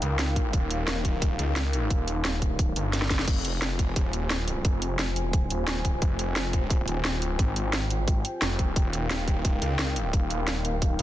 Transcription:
0.00 0.52 C#2 loud
0.00 3.24 D#4 medium
0.00 3.24 A#4 medium
0.00 3.24 F5 medium
0.00 3.24 G5 medium
0.00 closed hi-hat medium
0.19 snare loud
0.19 closed hi-hat medium
0.36 kick medium
0.36 closed hi-hat medium
0.53 1.38 D#1 loud
0.53 kick loud
0.53 closed hi-hat medium
0.70 closed hi-hat medium
0.88 snare loud
0.88 closed hi-hat medium
1.05 kick medium
1.05 closed hi-hat medium
1.22 kick loud
1.22 closed hi-hat medium
1.39 1.89 C#2 loud
1.39 closed hi-hat medium
1.56 snare loud
1.56 closed hi-hat medium
1.73 closed hi-hat medium
1.90 2.75 D#1 loud
1.90 kick loud
1.90 closed hi-hat loud
2.08 closed hi-hat medium
2.25 snare loud
2.25 closed hi-hat medium
2.42 kick medium
2.42 closed hi-hat medium
2.59 kick loud
2.59 closed hi-hat medium
2.76 3.26 G1 medium
2.76 closed hi-hat medium
2.93 snare medium
2.93 closed hi-hat medium
3.02 snare medium
3.10 kick medium
3.10 snare medium
3.10 closed hi-hat medium
3.19 snare medium
3.28 3.88 F1 loud
3.28 8.72 F4 medium
3.28 8.72 C5 medium
3.28 11.02 G5 medium
3.28 8.72 G#5 medium
3.28 kick loud
3.28 closed hi-hat loud
3.28 crash medium
3.45 closed hi-hat medium
3.62 snare loud
3.62 closed hi-hat loud
3.79 kick medium
3.79 closed hi-hat medium
3.88 4.12 E1 loud
3.96 kick loud
3.96 closed hi-hat medium
4.13 4.63 D#1 loud
4.13 closed hi-hat medium
4.30 snare loud
4.30 closed hi-hat medium
4.48 closed hi-hat medium
4.65 5.49 F1 medium
4.65 kick loud
4.65 closed hi-hat medium
4.82 closed hi-hat medium
4.99 snare loud
4.99 closed hi-hat medium
5.16 closed hi-hat medium
5.33 kick loud
5.33 closed hi-hat medium
5.50 6.01 D#1 medium
5.50 closed hi-hat medium
5.68 snare loud
5.68 closed hi-hat medium
5.85 kick medium
5.85 closed hi-hat medium
6.02 6.86 F1 loud
6.02 kick loud
6.02 closed hi-hat medium
6.19 closed hi-hat medium
6.36 snare loud
6.36 closed hi-hat medium
6.53 kick medium
6.53 closed hi-hat medium
6.70 kick loud
6.70 closed hi-hat medium
6.88 7.38 D#1 loud
6.88 closed hi-hat medium
7.05 snare loud
7.05 closed hi-hat medium
7.22 closed hi-hat medium
7.39 8.23 G#1 medium
7.39 kick loud
7.39 closed hi-hat medium
7.56 closed hi-hat medium
7.73 snare loud
7.73 closed hi-hat medium
7.90 closed hi-hat medium
8.08 kick loud
8.08 closed hi-hat medium
8.25 closed hi-hat medium
8.42 8.75 F1 medium
8.42 snare loud
8.42 closed hi-hat medium
8.59 kick medium
8.59 closed hi-hat medium
8.76 9.36 D#1 medium
8.76 11.02 D#4 medium
8.76 11.02 A#4 medium
8.76 11.02 F5 medium
8.76 kick loud
8.76 closed hi-hat medium
8.93 closed hi-hat medium
9.10 snare loud
9.10 closed hi-hat medium
9.28 kick medium
9.28 closed hi-hat medium
9.36 9.61 D1 medium
9.45 kick loud
9.45 closed hi-hat medium
9.62 10.12 C#2 medium
9.62 closed hi-hat medium
9.79 snare loud
9.79 closed hi-hat medium
9.96 closed hi-hat medium
10.13 10.73 D#1 loud
10.13 kick loud
10.13 closed hi-hat medium
10.30 closed hi-hat medium
10.48 snare loud
10.48 closed hi-hat medium
10.65 closed hi-hat medium
10.73 10.98 D1 loud
10.82 kick loud
10.82 closed hi-hat medium
10.99 11.02 C#2 medium
10.99 closed hi-hat medium

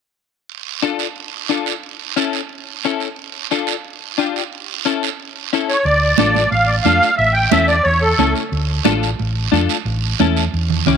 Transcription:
0.49 long guiro medium
0.82 1.06 D4 medium
0.82 1.06 F4 medium
0.82 1.06 A4 medium
0.82 short guiro medium
0.99 short guiro medium
1.16 long guiro medium
1.49 1.73 D4 medium
1.49 1.73 F4 soft
1.49 1.73 A4 medium
1.49 short guiro medium
1.66 short guiro medium
1.83 long guiro medium
2.16 2.40 C#4 medium
2.16 2.40 E4 medium
2.16 2.40 A4 medium
2.16 short guiro medium
2.33 short guiro medium
2.49 long guiro medium
2.84 3.08 C#4 medium
2.84 3.08 E4 soft
2.84 3.08 A4 medium
2.84 short guiro medium
3.00 short guiro medium
3.16 long guiro medium
3.51 3.74 D4 medium
3.51 3.74 F4 medium
3.51 3.75 A4 medium
3.51 short guiro medium
3.67 short guiro medium
3.85 long guiro medium
4.18 4.41 D4 medium
4.18 4.41 F4 medium
4.18 4.42 G4 medium
4.18 short guiro medium
4.36 short guiro medium
4.53 long guiro medium
4.85 5.08 C#4 medium
4.85 5.08 E4 medium
4.85 5.09 A4 medium
4.85 short guiro medium
5.03 short guiro medium
5.20 long guiro medium
5.53 5.76 C#4 medium
5.53 5.76 E4 medium
5.53 5.76 A4 medium
5.53 short guiro medium
5.69 5.84 C#5 medium
5.69 short guiro medium
5.85 6.12 D2 medium
5.85 6.17 D5 medium
5.85 high conga soft
5.85 long guiro medium
6.18 6.45 A1 medium
6.18 6.42 D4 medium
6.18 6.42 F4 medium
6.18 6.42 A4 medium
6.18 6.50 D5 medium
6.18 high conga medium
6.18 short guiro medium
6.35 high conga medium
6.35 short guiro medium
6.51 6.79 A1 medium
6.51 6.69 F5 medium
6.51 high conga soft
6.51 long guiro medium
6.67 6.75 D5 medium
6.83 6.98 F2 medium
6.83 7.09 D4 medium
6.83 7.09 F4 medium
6.83 7.09 A4 medium
6.83 7.15 F5 loud
6.83 high conga medium
6.83 short guiro medium
7.03 short guiro medium
7.17 7.45 A1 medium
7.17 7.33 E5 medium
7.17 high conga soft
7.17 long guiro medium
7.33 7.50 G5 medium
7.51 7.79 E2 medium
7.51 7.76 C#4 medium
7.51 7.76 E4 medium
7.51 7.76 A4 medium
7.51 7.67 E5 medium
7.51 high conga medium
7.51 short guiro medium
7.68 7.86 D5 medium
7.68 short guiro medium
7.84 8.12 E2 medium
7.84 8.02 C#5 medium
7.84 high conga soft
7.84 long guiro medium
8.02 8.33 A4 medium
8.18 8.32 C#2 medium
8.18 8.43 C#4 medium
8.18 8.43 E4 medium
8.18 8.43 A4 medium
8.18 high conga medium
8.18 short guiro soft
8.36 short guiro medium
8.52 8.79 D2 medium
8.52 high conga soft
8.52 long guiro medium
8.85 9.13 A1 medium
8.85 9.09 D4 medium
8.85 9.09 F4 medium
8.85 9.09 A4 medium
8.85 high conga loud
8.85 short guiro medium
9.03 short guiro medium
9.19 9.46 A1 medium
9.19 high conga soft
9.19 long guiro medium
9.52 9.66 F2 medium
9.52 9.76 D4 medium
9.52 9.76 F4 medium
9.52 9.76 A4 medium
9.52 high conga medium
9.52 short guiro medium
9.69 short guiro medium
9.85 10.13 A1 medium
9.85 high conga soft
9.85 long guiro medium
10.19 10.46 E2 medium
10.19 10.43 C#4 medium
10.19 10.43 E4 medium
10.19 10.44 A4 medium
10.19 high conga medium
10.19 short guiro medium
10.37 short guiro medium
10.53 10.80 E2 medium
10.53 long guiro medium
10.70 low conga medium
10.86 10.97 C#2 medium
10.86 10.97 C#4 medium
10.86 10.97 E4 medium
10.86 10.97 G4 medium
10.86 low conga medium
10.86 short guiro medium

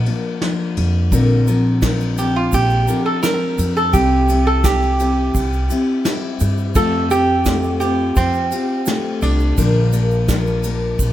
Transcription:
0.00 0.37 A#4 loud
0.06 0.40 F3 soft
0.06 0.41 A#3 soft
0.06 0.42 D4 medium
0.06 0.41 A#4 medium
0.06 ride soft
0.41 1.11 F3 medium
0.41 1.12 A#3 medium
0.41 1.12 D4 medium
0.41 1.12 A#4 medium
0.41 snare medium
0.41 ride medium
0.77 1.11 F2 loud
0.77 ride medium
1.12 2.49 A#1 medium
1.12 1.47 A#2 loud
1.12 1.47 D3 medium
1.12 1.48 F3 medium
1.12 1.47 C4 loud
1.12 1.47 D4 loud
1.12 1.46 A#4 loud
1.12 kick medium
1.12 ride medium
1.12 shaker medium
1.47 1.81 F3 soft
1.47 1.81 C4 medium
1.47 1.82 D4 medium
1.47 1.83 A#4 medium
1.47 ride soft
1.47 shaker medium
1.82 2.17 F3 medium
1.82 2.18 C4 medium
1.82 2.17 D4 medium
1.82 2.16 A#4 medium
1.82 kick medium
1.82 snare loud
1.82 ride medium
1.82 shaker medium
2.00 shaker soft
2.17 2.88 F3 soft
2.17 2.88 C4 soft
2.17 2.87 D4 soft
2.17 2.36 G4 medium
2.17 2.86 A#4 medium
2.17 ride soft
2.17 shaker medium
2.36 2.53 F4 medium
2.52 2.86 A#1 medium
2.52 3.05 G4 loud
2.52 kick medium
2.52 ride medium
2.52 shaker medium
2.70 shaker soft
2.87 3.22 F3 soft
2.87 3.22 C4 soft
2.87 3.23 D4 soft
2.87 3.23 A#4 medium
2.87 ride medium
2.87 shaker medium
3.06 3.22 A4 medium
3.23 3.93 F3 medium
3.23 3.93 C4 medium
3.23 3.94 D4 medium
3.23 3.76 A#4 loud
3.23 3.94 A#4 medium
3.23 snare medium
3.23 ride medium
3.23 shaker loud
3.58 3.92 F2 loud
3.58 ride medium
3.58 shaker medium
3.77 3.95 A4 loud
3.77 shaker soft
3.93 5.31 C2 loud
3.93 4.29 C3 medium
3.93 4.29 G3 medium
3.93 4.29 C4 medium
3.93 4.29 E4 medium
3.93 4.48 G4 medium
3.93 4.27 G4 medium
3.93 kick medium
3.93 ride medium
3.93 shaker medium
4.28 4.63 C4 soft
4.28 4.64 E4 medium
4.28 4.64 G4 medium
4.28 ride medium
4.28 shaker medium
4.47 4.65 A4 loud
4.63 4.99 G3 medium
4.63 5.00 C4 medium
4.63 4.99 E4 medium
4.63 6.02 G4 loud
4.63 4.98 G4 medium
4.63 kick medium
4.63 snare loud
4.63 ride medium
4.63 shaker loud
4.83 shaker soft
4.99 5.71 C4 soft
4.99 5.70 E4 soft
4.99 5.68 G4 medium
4.99 ride medium
4.99 shaker medium
5.35 5.68 C2 medium
5.35 kick medium
5.35 ride medium
5.35 shaker loud
5.53 shaker soft
5.70 6.04 C4 medium
5.70 6.05 E4 medium
5.70 6.05 G4 medium
5.70 ride medium
5.70 shaker medium
6.05 6.75 G3 medium
6.05 6.75 C4 medium
6.05 6.76 E4 medium
6.05 6.75 G4 medium
6.05 snare medium
6.05 ride medium
6.05 shaker medium
6.40 6.74 G2 loud
6.40 ride medium
6.40 shaker medium
6.58 shaker soft
6.75 8.13 F2 medium
6.75 7.11 F3 medium
6.75 7.11 A3 medium
6.75 7.11 C4 medium
6.75 7.10 F4 medium
6.75 7.09 G4 loud
6.75 7.11 A4 loud
6.75 kick medium
6.75 ride medium
6.75 shaker medium
7.10 7.45 C4 soft
7.10 7.46 F4 soft
7.10 7.46 G4 medium
7.10 7.79 G4 loud
7.10 ride soft
7.10 shaker medium
7.45 7.81 A3 medium
7.45 7.82 C4 medium
7.45 7.82 F4 medium
7.45 7.80 G4 medium
7.45 kick medium
7.45 snare loud
7.45 ride medium
7.45 shaker medium
7.63 shaker soft
7.80 8.52 C4 soft
7.80 8.52 F4 medium
7.80 8.17 G4 medium
7.80 8.50 G4 medium
7.80 ride soft
7.80 shaker medium
8.16 8.50 F2 medium
8.16 9.22 C4 loud
8.16 kick medium
8.16 ride medium
8.16 shaker medium
8.33 shaker soft
8.52 8.86 C4 soft
8.52 8.87 F4 medium
8.52 8.87 G4 medium
8.52 ride medium
8.52 shaker medium
8.86 9.58 A3 medium
8.86 9.58 C4 medium
8.86 9.58 F4 medium
8.86 9.58 G4 medium
8.86 snare medium
8.86 ride medium
8.86 shaker loud
9.22 9.56 C2 medium
9.22 11.13 D4 medium
9.22 ride medium
9.22 shaker medium
9.40 shaker soft
9.57 10.95 A#1 medium
9.57 9.93 A#2 medium
9.57 9.93 D3 medium
9.57 9.93 F3 medium
9.57 9.92 A#3 medium
9.57 9.92 D4 loud
9.57 9.91 A#4 medium
9.57 kick loud
9.57 ride medium
9.57 shaker medium
9.93 10.27 F3 soft
9.93 10.28 A#3 medium
9.93 10.28 D4 soft
9.93 10.28 A#4 medium
9.93 ride medium
9.93 shaker medium
10.11 shaker soft
10.28 10.64 F3 medium
10.28 10.64 A#3 medium
10.28 10.64 D4 medium
10.28 10.63 A#4 medium
10.28 kick medium
10.28 snare medium
10.28 ride medium
10.28 shaker medium
10.47 shaker soft
10.63 11.13 F3 medium
10.63 11.13 A#3 soft
10.63 11.13 D4 medium
10.63 11.13 A#4 medium
10.63 ride medium
10.63 shaker medium
10.99 11.13 A#1 medium
10.99 kick medium
10.99 ride medium
10.99 shaker medium

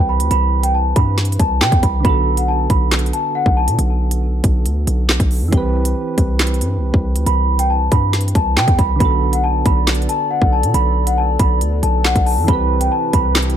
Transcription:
0.00 0.21 C2 loud
0.00 1.99 E3 medium
0.00 2.00 C4 medium
0.00 2.02 G4 medium
0.00 2.03 B4 medium
0.09 0.28 B5 medium
0.20 0.30 D2 loud
0.20 closed hi-hat medium
0.31 0.93 C2 loud
0.31 0.61 B5 medium
0.31 closed hi-hat medium
0.63 0.73 G5 medium
0.63 closed hi-hat medium
0.74 0.93 A5 medium
0.96 1.38 G2 loud
0.96 1.15 B5 medium
0.96 kick medium
0.96 closed hi-hat medium
1.18 snare medium
1.18 closed hi-hat medium
1.25 closed hi-hat medium
1.32 closed hi-hat medium
1.40 1.63 C2 loud
1.40 1.58 A5 medium
1.40 kick medium
1.40 closed hi-hat medium
1.61 1.72 C3 loud
1.61 1.80 G5 medium
1.61 snare loud
1.61 clap loud
1.72 1.83 E2 loud
1.72 kick loud
1.72 closed hi-hat medium
1.83 2.04 C2 loud
1.83 2.02 B5 medium
1.83 kick loud
1.83 closed hi-hat medium
2.00 5.46 D3 medium
2.00 5.48 B3 medium
2.05 2.67 B1 loud
2.05 5.49 F#4 medium
2.05 2.35 B5 loud
2.05 kick loud
2.05 closed hi-hat medium
2.09 5.51 A4 medium
2.37 2.47 F#5 medium
2.37 closed hi-hat medium
2.48 2.67 A5 medium
2.70 3.12 B1 loud
2.70 2.89 B5 medium
2.70 kick medium
2.70 closed hi-hat medium
2.92 snare loud
2.92 clap medium
2.92 closed hi-hat medium
2.99 closed hi-hat medium
3.06 closed hi-hat soft
3.13 3.32 A5 medium
3.13 closed hi-hat medium
3.35 3.54 F#5 medium
3.46 3.69 B1 loud
3.46 kick loud
3.57 3.76 A5 medium
3.68 3.78 B2 loud
3.68 closed hi-hat medium
3.79 4.41 B1 loud
3.79 closed hi-hat medium
4.11 closed hi-hat medium
4.44 4.67 B1 loud
4.44 kick medium
4.44 closed hi-hat medium
4.66 4.86 D2 loud
4.66 closed hi-hat medium
4.87 5.19 B1 loud
4.87 closed hi-hat medium
5.09 snare loud
5.09 clap loud
5.20 5.43 B1 loud
5.20 kick loud
5.20 closed hi-hat medium
5.31 open hi-hat medium
5.42 5.52 F#2 loud
5.48 8.94 E3 medium
5.48 8.96 C4 medium
5.53 5.94 C2 loud
5.53 8.97 G4 medium
5.53 kick loud
5.53 closed hi-hat medium
5.57 8.99 B4 medium
5.85 closed hi-hat medium
6.18 6.63 C2 loud
6.18 kick medium
6.18 closed hi-hat medium
6.39 snare loud
6.39 clap medium
6.39 closed hi-hat medium
6.47 closed hi-hat medium
6.54 closed hi-hat soft
6.61 6.79 G2 loud
6.61 closed hi-hat medium
6.78 6.93 C2 loud
6.94 7.17 C2 loud
6.94 kick loud
7.16 7.26 D2 loud
7.16 closed hi-hat medium
7.26 7.89 C2 loud
7.26 7.57 B5 medium
7.26 closed hi-hat medium
7.59 7.68 G5 medium
7.59 closed hi-hat medium
7.70 7.89 A5 medium
7.92 8.33 G2 loud
7.92 8.10 B5 medium
7.92 kick medium
7.92 closed hi-hat medium
8.13 snare medium
8.13 closed hi-hat medium
8.21 closed hi-hat medium
8.28 closed hi-hat medium
8.35 8.58 C2 loud
8.35 8.54 A5 medium
8.35 kick medium
8.35 closed hi-hat medium
8.57 8.67 C3 loud
8.57 8.76 G5 medium
8.57 snare loud
8.57 clap loud
8.68 8.78 E2 loud
8.68 kick loud
8.68 closed hi-hat medium
8.79 9.00 C2 loud
8.79 8.97 B5 medium
8.79 kick loud
8.79 closed hi-hat medium
8.96 12.42 D3 medium
8.96 12.43 B3 medium
9.00 9.63 B1 loud
9.00 12.45 F#4 medium
9.00 12.45 A4 medium
9.00 13.57 B4 medium
9.00 12.45 D5 medium
9.00 9.31 B5 loud
9.00 kick loud
9.00 closed hi-hat medium
9.05 12.46 A4 medium
9.33 9.42 F#5 medium
9.33 closed hi-hat medium
9.44 9.62 A5 medium
9.66 10.07 B1 loud
9.66 9.84 B5 medium
9.66 kick medium
9.66 closed hi-hat medium
9.87 snare loud
9.87 clap medium
9.87 closed hi-hat medium
9.95 closed hi-hat medium
10.02 closed hi-hat soft
10.09 10.28 A5 medium
10.09 closed hi-hat medium
10.31 10.49 F#5 medium
10.42 10.65 B1 loud
10.42 kick loud
10.53 10.71 A5 medium
10.63 10.74 B2 loud
10.63 closed hi-hat medium
10.74 11.37 B1 loud
10.74 11.05 B5 loud
10.74 closed hi-hat medium
11.07 11.16 F#5 medium
11.07 closed hi-hat medium
11.18 11.36 A5 medium
11.39 11.63 B1 loud
11.39 11.58 B5 medium
11.39 kick medium
11.39 closed hi-hat medium
11.61 11.82 D2 loud
11.61 closed hi-hat medium
11.83 12.14 B1 loud
11.83 12.02 A5 medium
11.83 closed hi-hat medium
12.05 12.23 F#5 medium
12.05 snare loud
12.05 clap loud
12.16 12.39 B1 loud
12.16 kick loud
12.16 closed hi-hat medium
12.26 12.45 A5 medium
12.26 open hi-hat medium
12.37 12.48 F#2 loud
12.44 13.57 C3 medium
12.44 13.57 E3 medium
12.44 13.57 C4 medium
12.44 13.57 E4 medium
12.48 12.90 C2 loud
12.48 13.57 G4 medium
12.48 12.79 B5 loud
12.48 kick loud
12.48 closed hi-hat medium
12.53 13.57 B4 medium
12.81 12.90 G5 medium
12.81 closed hi-hat medium
12.92 13.10 A5 medium
13.13 13.57 C2 loud
13.13 13.32 B5 medium
13.13 kick medium
13.13 closed hi-hat medium
13.35 snare loud
13.35 clap medium
13.35 closed hi-hat medium
13.42 closed hi-hat medium
13.50 closed hi-hat soft

